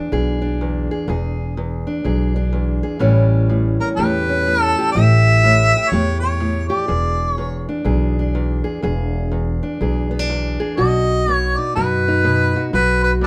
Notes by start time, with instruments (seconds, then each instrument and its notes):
Already playing: steel-string acoustic guitar E2 D4 G#4
0.12 upright bass B1, steel-string acoustic guitar E2 G#4
0.42 steel-string acoustic guitar D4
0.61 steel-string acoustic guitar E2
0.91 steel-string acoustic guitar G#4
1.08 upright bass E1, steel-string acoustic guitar E2 G#4
1.57 steel-string acoustic guitar E2
1.87 steel-string acoustic guitar D4
2.04 upright bass B1, steel-string acoustic guitar E2 G#4
2.36 steel-string acoustic guitar D4
2.53 steel-string acoustic guitar E2
2.83 steel-string acoustic guitar G#4
2.99 upright bass A1, steel-string acoustic guitar A2 E3 G3 C#4 G4
3.49 steel-string acoustic guitar A2
3.80 steel-string acoustic guitar C#4, harmonica A#4
3.97 upright bass E2, steel-string acoustic guitar A2 G4, harmonica B4
4.29 steel-string acoustic guitar C#4
4.47 steel-string acoustic guitar A2
4.63 harmonica A4
4.78 steel-string acoustic guitar G4
4.92 upright bass A1, steel-string acoustic guitar A2, harmonica E5
4.97 steel-string acoustic guitar G4
5.44 steel-string acoustic guitar A2
5.77 steel-string acoustic guitar G4
5.89 upright bass E2, steel-string acoustic guitar A2, harmonica C#5
5.93 steel-string acoustic guitar G4
6.20 steel-string acoustic guitar G4, harmonica C#5
6.40 steel-string acoustic guitar A2
6.68 steel-string acoustic guitar G4, harmonica D5
6.88 upright bass E1, steel-string acoustic guitar E2 G#4
7.32 harmonica C#5
7.38 steel-string acoustic guitar E2
7.69 steel-string acoustic guitar D4
7.84 upright bass B1, steel-string acoustic guitar E2 G#4
8.19 steel-string acoustic guitar D4
8.35 steel-string acoustic guitar E2
8.64 steel-string acoustic guitar G#4
8.82 upright bass E1, steel-string acoustic guitar E2 G#4
9.32 steel-string acoustic guitar E2
9.63 steel-string acoustic guitar D4
9.81 upright bass B1, steel-string acoustic guitar E2 G#4
10.11 steel-string acoustic guitar B3
10.19 steel-string acoustic guitar D4
10.30 steel-string acoustic guitar E2
10.60 steel-string acoustic guitar G#4
10.77 upright bass B1, steel-string acoustic guitar B2 F#4, harmonica D#5
11.28 steel-string acoustic guitar B2
11.33 harmonica C#5
11.57 steel-string acoustic guitar D#4, harmonica D5
11.75 upright bass F#2, steel-string acoustic guitar B2 F#4, harmonica B4
12.08 steel-string acoustic guitar D#4
12.24 steel-string acoustic guitar B2
12.56 steel-string acoustic guitar F#4
12.73 upright bass B1, steel-string acoustic guitar B2 F#4, harmonica B4
13.04 harmonica B4
13.21 steel-string acoustic guitar B2, harmonica A4 B4 D5